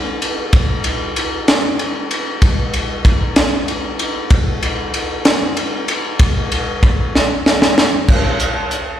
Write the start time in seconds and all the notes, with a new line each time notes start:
0.22 ride
0.53 kick, ride
0.84 ride
1.16 ride
1.48 snare, ride
1.79 ride
2.11 ride
2.42 kick, ride
2.74 ride
3.05 kick, ride
3.36 snare, ride
3.68 ride
3.99 ride
4.30 kick, ride
4.63 ride
4.94 ride
5.25 snare, ride
5.57 ride
5.88 ride
6.19 kick, ride
6.52 ride
6.83 kick, ride
7.15 snare
7.46 snare
7.62 snare
7.78 snare
8.08 kick, crash
8.40 closed hi-hat
8.71 closed hi-hat